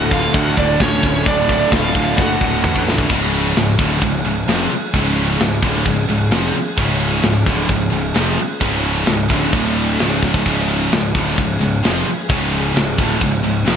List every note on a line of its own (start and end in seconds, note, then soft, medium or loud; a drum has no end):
0.00 0.28 D1 loud
0.00 0.12 D2 medium
0.00 0.12 D2 loud
0.00 0.09 D2 medium
0.00 0.10 A2 medium
0.00 0.11 A2 loud
0.00 0.11 A2 medium
0.00 0.10 D3 loud
0.00 0.13 D3 loud
0.00 3.06 D3 medium
0.00 3.07 F#3 medium
0.00 3.07 A4 medium
0.00 0.12 F#5 loud
0.10 0.18 D2 medium
0.10 0.19 A2 medium
0.10 0.34 D3 loud
0.10 0.33 F4 medium
0.10 0.35 F5 loud
0.10 kick loud
0.18 0.25 D2 medium
0.18 0.25 A2 medium
0.25 0.33 D2 medium
0.25 0.33 A2 medium
0.34 0.41 D2 medium
0.34 0.54 D2 medium
0.34 0.41 A2 medium
0.34 0.57 D3 loud
0.34 0.56 F#4 loud
0.34 0.56 F#5 loud
0.34 kick loud
0.34 china medium
0.41 0.48 D2 medium
0.41 0.48 A2 medium
0.48 0.56 D2 medium
0.48 0.56 A2 medium
0.56 0.77 D1 loud
0.56 0.63 D2 medium
0.56 0.64 A2 medium
0.56 0.81 D3 medium
0.56 0.79 D4 medium
0.56 0.79 D5 medium
0.56 kick medium
0.64 0.70 D2 medium
0.64 0.72 A2 medium
0.70 0.78 D2 medium
0.70 0.79 A2 medium
0.78 1.00 D1 medium
0.78 0.85 D2 medium
0.78 0.86 A2 medium
0.78 1.23 C#4 medium
0.78 1.27 C#5 loud
0.78 kick loud
0.78 snare loud
0.78 china medium
0.82 0.93 D2 medium
0.82 1.02 D3 loud
0.86 0.94 A2 medium
0.94 1.01 D2 medium
0.94 1.01 A2 medium
1.01 1.23 D1 loud
1.01 1.07 D2 medium
1.01 1.09 A2 medium
1.01 1.26 D3 loud
1.01 kick medium
1.08 1.15 D2 medium
1.08 1.17 A2 medium
1.16 1.23 D2 medium
1.16 1.25 A2 medium
1.25 1.66 D1 loud
1.25 1.31 D2 medium
1.25 1.33 A2 medium
1.25 1.48 D3 loud
1.25 1.47 D4 medium
1.25 1.49 D5 loud
1.25 kick loud
1.25 china medium
1.31 1.39 D2 medium
1.31 1.40 A2 medium
1.40 1.47 D2 medium
1.40 1.47 A2 medium
1.48 1.55 D2 medium
1.48 1.56 A2 medium
1.48 1.70 D3 loud
1.48 1.70 D4 medium
1.48 1.73 D5 medium
1.48 kick loud
1.56 1.63 D2 medium
1.56 1.63 A2 medium
1.64 1.70 D2 medium
1.64 1.70 A2 medium
1.70 1.92 D1 medium
1.70 1.78 D2 medium
1.70 1.78 A2 medium
1.70 1.95 D3 loud
1.70 2.15 F4 medium
1.70 2.17 F5 loud
1.70 kick loud
1.70 snare loud
1.70 china medium
1.79 1.86 D2 medium
1.79 1.87 A2 medium
1.86 1.93 D2 medium
1.86 1.94 A2 medium
1.94 2.15 D1 medium
1.94 2.01 D2 medium
1.94 2.02 A2 medium
1.94 2.18 D3 medium
1.94 kick medium
2.02 2.09 D2 medium
2.02 2.10 A2 medium
2.09 2.16 D2 medium
2.09 2.18 A2 medium
2.17 2.38 F#1 medium
2.17 2.22 D2 medium
2.17 2.25 A2 medium
2.17 2.41 D3 loud
2.17 2.82 F#4 medium
2.17 2.83 F#5 medium
2.17 kick loud
2.17 snare medium
2.23 2.30 D2 medium
2.23 2.32 A2 medium
2.32 2.39 D2 medium
2.32 2.40 A2 medium
2.39 2.61 D1 medium
2.39 2.47 D2 medium
2.39 2.48 A2 medium
2.39 2.65 D3 loud
2.39 kick medium
2.48 2.55 D2 medium
2.48 2.56 A2 medium
2.55 2.62 D2 medium
2.55 2.64 A2 medium
2.63 3.04 A1 medium
2.63 2.70 D2 medium
2.63 2.70 A2 medium
2.63 2.88 D3 loud
2.63 kick loud
2.63 mid tom loud
2.71 2.77 D2 medium
2.71 2.78 A2 medium
2.76 2.85 D2 medium
2.76 2.86 A2 medium
2.76 kick medium
2.86 2.93 D2 medium
2.86 2.93 A2 medium
2.86 3.09 D3 loud
2.86 snare loud
2.94 3.01 D2 medium
2.94 3.01 A2 medium
2.98 3.08 D2 medium
2.98 3.09 A2 medium
2.98 kick medium
3.09 3.53 C#1 loud
3.09 3.54 C#2 loud
3.09 3.55 G#2 medium
3.09 3.55 C#3 loud
3.09 9.50 F3 medium
3.09 9.50 C#4 medium
3.09 9.50 G#4 medium
3.09 kick loud
3.09 crash loud
3.09 crash medium
3.33 crash medium
3.56 3.77 C#1 medium
3.56 3.74 C#2 medium
3.56 3.74 G#2 medium
3.56 snare loud
3.56 crash medium
3.79 4.00 D1 loud
3.79 4.01 D2 medium
3.79 4.01 A2 loud
3.79 4.02 D3 loud
3.79 kick loud
3.79 crash medium
4.02 4.23 C#1 medium
4.02 4.21 C#2 medium
4.02 4.21 G#2 medium
4.02 kick loud
4.02 crash medium
4.24 4.46 C#1 medium
4.24 4.43 C#2 medium
4.24 4.44 G#2 medium
4.24 crash medium
4.47 4.69 F1 loud
4.47 4.70 F2 loud
4.47 4.71 C3 loud
4.47 4.71 F3 loud
4.47 snare loud
4.47 crash medium
4.70 muted picked electric bass stroke soft
4.70 muted distorted electric guitar stroke medium
4.70 crash medium
4.94 5.37 C#1 medium
4.94 5.39 C#2 loud
4.94 5.39 G#2 loud
4.94 5.39 C#3 loud
4.94 kick loud
4.94 crash medium
5.17 crash medium
5.39 5.60 C#1 medium
5.39 5.58 C#2 medium
5.39 5.59 G#2 medium
5.39 snare loud
5.39 crash medium
5.63 5.84 D1 loud
5.63 5.85 D2 medium
5.63 5.85 A2 medium
5.63 5.86 D3 loud
5.63 kick loud
5.63 crash medium
5.85 6.07 C#1 medium
5.85 6.04 C#2 medium
5.85 6.04 G#2 medium
5.85 kick loud
5.85 crash medium
6.08 6.29 C#1 medium
6.08 6.27 C#2 medium
6.08 6.28 G#2 medium
6.08 crash medium
6.31 6.53 F1 loud
6.31 6.54 F2 loud
6.31 6.54 C3 loud
6.31 6.54 F3 loud
6.31 snare loud
6.31 crash medium
6.54 muted distorted electric guitar stroke medium
6.54 muted picked electric bass stroke soft
6.54 crash medium
6.78 7.20 C#1 medium
6.78 7.21 C#2 loud
6.78 7.21 G#2 loud
6.78 7.23 C#3 loud
6.78 kick loud
6.78 crash loud
7.00 crash medium
7.22 7.45 C#1 medium
7.22 7.41 C#2 medium
7.22 7.41 G#2 medium
7.22 snare loud
7.22 crash medium
7.46 7.68 D1 loud
7.46 7.67 D2 medium
7.46 7.68 A2 loud
7.46 7.69 D3 loud
7.46 kick loud
7.46 crash medium
7.68 7.91 C#1 medium
7.68 7.87 C#2 medium
7.68 7.87 G#2 medium
7.68 kick loud
7.68 crash medium
7.90 8.13 C#1 medium
7.90 8.10 C#2 medium
7.90 8.10 G#2 medium
7.90 crash medium
8.14 8.37 F1 loud
8.14 8.37 F2 loud
8.14 8.37 C3 loud
8.14 8.38 F3 loud
8.14 snare loud
8.14 crash medium
8.38 muted distorted electric guitar stroke medium
8.38 muted picked electric bass stroke soft
8.38 crash medium
8.61 9.04 C#1 medium
8.61 9.06 C#2 loud
8.61 9.06 G#2 loud
8.61 9.07 C#3 loud
8.61 kick loud
8.61 crash medium
8.84 crash medium
9.06 9.29 C#1 medium
9.06 9.26 C#2 medium
9.06 9.26 G#2 medium
9.06 snare loud
9.06 crash medium
9.29 9.51 D1 loud
9.29 9.52 D2 medium
9.29 9.52 A2 loud
9.29 9.52 D3 loud
9.29 kick loud
9.29 crash medium
9.52 9.96 D1 loud
9.52 9.98 D2 medium
9.52 9.99 A2 loud
9.52 9.99 D3 loud
9.52 9.99 D3 medium
9.52 9.99 A3 medium
9.52 9.99 A4 medium
9.52 kick loud
9.52 crash medium
9.76 crash medium
9.99 10.43 C#1 medium
9.99 10.43 C#2 loud
9.99 10.44 G#2 loud
9.99 10.45 C#3 loud
9.99 13.76 F3 medium
9.99 13.76 C#4 medium
9.99 13.76 G#4 medium
9.99 snare loud
9.99 crash medium
10.23 kick medium
10.34 kick medium
10.44 10.88 C#1 loud
10.44 10.90 C#2 loud
10.44 10.91 G#2 loud
10.44 10.91 C#3 loud
10.44 kick loud
10.44 splash medium
10.44 crash loud
10.69 crash medium
10.92 11.13 C#1 medium
10.92 11.10 C#2 medium
10.92 11.10 G#2 medium
10.92 snare loud
10.92 crash medium
11.15 11.36 D1 loud
11.15 11.36 D2 medium
11.15 11.37 A2 loud
11.15 11.37 D3 medium
11.15 kick loud
11.15 crash medium
11.37 11.59 C#1 medium
11.37 11.55 C#2 medium
11.37 11.56 G#2 medium
11.37 kick medium
11.37 crash medium
11.59 11.82 C#1 medium
11.59 11.78 C#2 medium
11.59 11.78 G#2 medium
11.59 crash medium
11.83 12.05 F1 loud
11.83 12.05 F2 loud
11.83 12.05 C3 loud
11.83 12.06 F3 loud
11.83 snare loud
11.83 crash medium
12.06 muted distorted electric guitar stroke medium
12.06 muted picked electric bass stroke soft
12.06 crash medium
12.29 12.72 C#1 loud
12.29 12.73 C#2 loud
12.29 12.73 G#2 loud
12.29 12.75 C#3 loud
12.29 kick loud
12.29 crash medium
12.53 crash medium
12.74 12.96 C#1 medium
12.74 12.93 C#2 medium
12.74 12.93 G#2 medium
12.74 snare loud
12.74 crash medium
12.97 13.20 D1 loud
12.97 13.20 D2 medium
12.97 13.20 A2 loud
12.97 13.20 D3 loud
12.97 kick loud
12.97 crash medium
13.21 13.43 C#1 medium
13.21 13.40 C#2 medium
13.21 13.40 G#2 medium
13.21 kick medium
13.21 crash medium
13.43 13.65 C#1 medium
13.43 13.62 C#2 medium
13.43 13.62 G#2 medium
13.43 crash medium
13.65 13.76 F1 loud
13.65 13.76 F2 medium
13.65 13.76 C3 loud
13.65 13.76 F3 loud
13.65 snare loud
13.65 crash medium